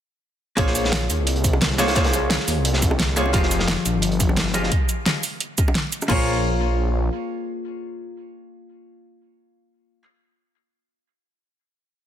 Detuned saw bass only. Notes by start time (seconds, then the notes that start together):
0.58 A#1
1.10 D#2
1.19 C2
2.48 D#2
2.57 C2
3.34 F1
3.86 A#1
3.95 G1
6.10 A#1